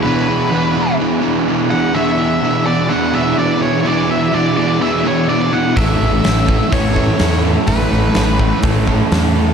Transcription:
<<
  \new Staff \with { instrumentName = "Lead electric guitar" } { \time 4/4 \key e \mixolydian \tempo 4 = 126 b'2 r4. fis''8 | e''4. d''8 fis''8 e''8 d''8 cis''8 | d''8 e''8 d''8 d''8 e''8 cis''8 d''8 fis''8 | e''2 cis''4. r8 |
b'2 r2 | }
  \new Staff \with { instrumentName = "Overdriven electric guitar" } { \time 4/4 \key e \mixolydian <e b d' gis'>8 <b d' gis'>8 <e b d' gis'>8 <b d' gis'>8 <e b d' gis'>8 <e b d' gis'>8 <e b d' gis'>8 <b d' gis'>8 | <e b d' gis'>8 <b d' gis'>8 <e b d' gis'>8 <b d' gis'>8 <e b d' gis'>8 <e b d' gis'>8 <e b d' gis'>8 <b d' gis'>8 | <e b d' gis'>8 <b d' gis'>8 <e b d' gis'>8 <b d' gis'>8 <e b d' gis'>8 <e b d' gis'>8 <e b d' gis'>8 <b d' gis'>8 | <a, e a cis' e' a'>8 <a cis' e' a'>8 <a, e a cis' e' a'>8 <a cis' e' a'>8 <a cis' e' a'>8 <a, e a cis' e' a'>8 <a cis' e' a'>8 <a cis' e' a'>8 |
<a, e a cis' e' a'>8 <a cis' e' a'>8 <a, e a cis' e' a'>8 <a cis' e' a'>8 <a cis' e' a'>8 <a, e a cis' e' a'>8 <a cis' e' a'>8 <a cis' e' a'>8 | }
  \new Staff \with { instrumentName = "Distorted electric guitar" } { \clef bass \time 4/4 \key e \mixolydian <e, b, e>4 <e, b, e>4 <e, b, e>8 <b, e>8 <e, b, e>8 <b, e>8 | <e, b, e>4 <e, b, e>4 <e, b, e>8 <b, e>8 <e, b, e>8 <b, e>8 | <e, b, e>4 <e, b, e>4 <e, b, e>8 <b, e>8 <e, b, e>8 <b, e>8 | <a, e a>4 <a, e a>4 <a, e a>8 <e a>8 <a, e a>8 <e a>8 |
<a, e a>4 <a, e a>4 <a, e a>8 <e a>8 <a, e a>8 <e a>8 | }
  \new Staff \with { instrumentName = "Overdriven electric guitar" } { \clef bass \time 4/4 \key e \mixolydian <e, b, e>4. <e, b, e>2~ <e, b, e>8 | <e, b, e>4. <e, b, e>2~ <e, b, e>8 | <e, b, e>4. <e, b, e>2~ <e, b, e>8 | <a, e a>4. <a, e a>2~ <a, e a>8 |
<a, e a>4. <a, e a>2~ <a, e a>8 | }
  \new Staff \with { instrumentName = "Picked electric bass" } { \clef bass \time 4/4 \key e \mixolydian r1 | r1 | r1 | a,,8 a,,8 a,,4 a,,4 e,4 |
a,,8 a,,8 a,,4 a,,4 e,4 | }
  \new DrumStaff \with { instrumentName = "Drums" } \drummode { \time 4/4 r4 r4 r4 r4 | r4 r4 r4 r4 | r4 r4 r4 r4 | <hho bd>4 <hho sn>8 bd8 <hho bd>8 bd8 <hho sn>4 |
<hho bd>4 <hho sn>8 bd8 <hho bd>8 bd8 <hho sn>4 | }
>>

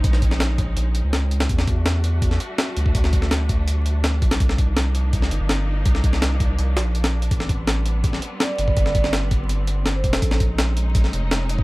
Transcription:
<<
  \new Staff \with { instrumentName = "Vibraphone" } { \time 4/4 \key c \lydian \tempo 4 = 165 r1 | r1 | r1 | r1 |
r1 | r2. d''4~ | d''16 d''8 r2 r8 c''8 a'16 | a'16 r2. r8. | }
  \new Staff \with { instrumentName = "String section" } { \time 4/4 \key c \lydian << { <aes ees'>1 | <g a fis'>1~ | <g a fis'>1 | <f bes ees'>1~ |
<f bes ees'>1 | <g b>1~ | <g b>1 | <aes ees'>1 | } \\ { <c' des'>1 | d'1~ | d'1~ | d'1~ |
d'1 | c'1~ | c'1 | des'1 | } >> }
  \new Staff \with { instrumentName = "Sub bass" } { \clef bass \time 4/4 \key c \lydian bes,,2 bes,,8. des,4~ des,16 | e,2~ e,8 r4 d,8~ | d,2.~ d,8 b,,8 | c,2~ c,8 g,,16 g,,4~ g,,16 |
c,2 c,8 bes,,4. | a,,2~ a,,8 r4 g,,8~ | g,,2.~ g,,8 e,,8 | bes,,2~ bes,,8 f,,16 f,,4~ f,,16 | }
  \new DrumStaff \with { instrumentName = "Drums" } \drummode { \time 4/4 <hh bd>16 sn16 <hh bd>16 sn16 <hh sn>8 <hh bd>8 hh8 hh8 <hh sn>8 hh16 <hh sn>16 | <hh bd>16 sn16 <hh bd>8 <hh sn>8 hh8 <hh bd>16 sn16 hh8 <hh sn>8 hh16 bd16 | <hh bd>16 sn16 <hh bd>16 sn16 <hh sn>8 <hh bd>8 hh8 hh8 <hh sn>8 <hh bd>16 <hh sn>16 | <hh bd>16 sn16 <hh bd>8 <hh sn>8 hh8 <hh bd>16 sn16 hh8 <hh sn>4 |
<hh bd>16 sn16 <hh bd>16 sn16 <hh sn>8 <hh bd>8 hh8 <hh sn>8 hh16 <hh sn>8 hh16 | <hh bd>16 sn16 <hh bd>8 <hh sn>8 hh8 <hh bd>16 sn16 hh8 <hh sn>8 hh16 bd16 | <hh bd>16 sn16 <hh bd>16 sn16 <hh sn>8 <hh bd>8 hh8 hh8 <hh sn>8 <hh bd>16 <hh sn>16 | <hh bd>16 sn16 <hh bd>8 <hh sn>8 hh8 <hh bd>16 sn16 hh8 <hh sn>8 hh16 bd16 | }
>>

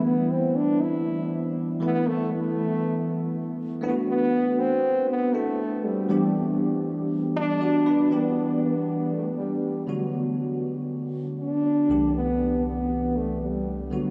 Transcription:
<<
  \new Staff \with { instrumentName = "French horn" } { \time 4/4 \key e \minor \tempo 4 = 119 b8 c'8 d'8 e'4. r8 b8 | a8 a2 r4 b8 | b4 c'4 b8 a4 g8~ | g4 r4. d'4. |
b4 b4 a8 g4 fis8~ | fis8 r2 d'4. | b4 b4 a8 g4 fis8 | }
  \new Staff \with { instrumentName = "Tine electric piano" } { \time 4/4 \key e \minor r1 | r1 | r1 | r2. <fis' d''>8 <d' b'>8~ |
<d' b'>8 r2. r8 | r1 | r1 | }
  \new Staff \with { instrumentName = "Tine electric piano" } { \time 4/4 \key e \minor <e a b e'>2.~ <e a b e'>8 <e a b e'>8~ | <e a b e'>2.~ <e a b e'>8 <a d' e' fis'>8~ | <a d' e' fis'>2~ <a d' e' fis'>8 <a d' e'>4. | <e g b d' g'>1 |
<e b d' g'>2.~ <e b d' g'>8 <d a b fis'>8~ | <d a b fis'>2.~ <d a b fis'>8 <c, c e a g'>8~ | <c, c e a g'>2.~ <c, c e a g'>8 <d a b fis'>8 | }
>>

